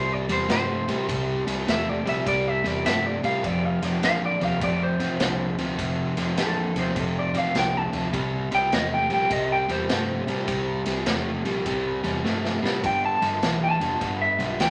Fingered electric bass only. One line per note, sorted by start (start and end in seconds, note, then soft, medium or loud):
0.00 0.26 C2 medium
0.28 0.48 E2 medium
0.49 0.85 G2 medium
0.88 1.07 A2 medium
1.09 1.44 C2 medium
1.46 1.65 C2 medium
1.67 2.02 E2 medium
2.05 2.25 A#1 medium
2.27 2.62 C2 medium
2.64 2.83 E2 medium
2.85 3.21 G2 medium
3.23 3.46 A2 medium
3.44 3.79 F1 medium
3.82 4.01 F1 medium
4.03 4.38 A1 medium
4.41 4.60 D#2 medium
4.62 4.97 F1 medium
5.00 5.19 A1 medium
5.20 5.56 C2 medium
5.58 5.77 D2 medium
5.79 6.14 F1 medium
6.17 6.36 F1 medium
6.38 6.73 A1 medium
6.76 6.95 D#2 medium
6.96 7.32 F1 medium
7.34 7.53 A1 medium
7.55 7.91 C2 medium
7.93 8.13 D2 medium
8.13 8.49 C2 medium
8.51 8.71 C2 medium
8.72 9.08 E2 medium
9.11 9.30 A#1 medium
9.31 9.66 C2 medium
9.69 9.88 E2 medium
9.89 10.25 G2 medium
10.28 10.47 A2 medium
10.48 10.84 C2 medium
10.86 11.05 C2 medium
11.06 11.42 E2 medium
11.45 11.64 A#1 medium
11.66 12.01 C2 medium
12.03 12.23 E2 loud
12.24 12.60 G2 medium
12.63 12.85 A2 medium
12.84 13.19 G1 medium
13.21 13.40 G1 medium
13.42 13.77 B1 medium
13.80 13.99 F1 medium
14.02 14.37 G1 medium
14.39 14.58 B1 loud
14.60 14.70 D2 medium